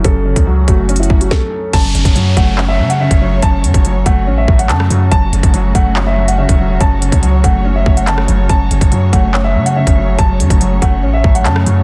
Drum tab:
CC |------------------------------------------------|x-----------------------------------------------|------------------------------------------------|------------------------------------------------|
HH |x--------x--------x-----x-x-x----x--------------|x-----x--x--x-----x--------------x-----x--------|x-----x--x--x-----x--------------x--x-----x-----|x-----x--x--x-----x--------------x-----x--------|
CP |------------------------------------------------|------------------------x-----------------------|------------------------------------x-----------|------------------------x-----------------------|
SD |------------------------------------o-----------|------------------------------------------------|---------------------------------------r--------|------------------------------------------------|
BD |o--------o--------o-----------o-----o-----------|o--------o--------o--------------------o--------|o--------o--------o-----------o-----------------|o--------o--------o--------------------o--------|

CC |------------------------------------------------|------------------------------------------------|------------------------------------------------|
HH |x-----x--x--x-----x--------------x--x-----x-----|x-----x--x--x-----x--------------x-----x--------|x-----x--x--x-----x--------------x--x-----x-----|
CP |------------------------------------x-----------|------------------------x-----------------------|------------------------------------x-----------|
SD |---------------------------------------r--------|------------------------------------------------|---------------------------------------r--------|
BD |o--------o--------o-----------o-----------------|o--------o--------o--------------------o--------|o--------o--------o-----------o-----------------|